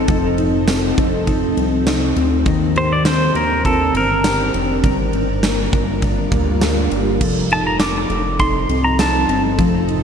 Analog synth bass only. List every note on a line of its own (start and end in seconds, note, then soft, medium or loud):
0.08 0.93 F1 loud
0.98 1.54 F1 medium
1.57 2.14 C2 loud
2.17 2.45 D2 loud
2.46 3.31 D#2 loud
3.35 3.92 D#2 medium
3.94 4.51 G1 loud
4.54 4.82 F1 medium
4.84 5.69 G1 loud
5.73 6.29 G1 medium
6.32 6.88 D2 medium
6.91 7.20 G1 medium
7.21 8.06 F1 loud
8.10 8.67 F1 loud
8.69 9.26 C2 medium
9.29 9.57 G1 medium
9.59 10.03 F1 loud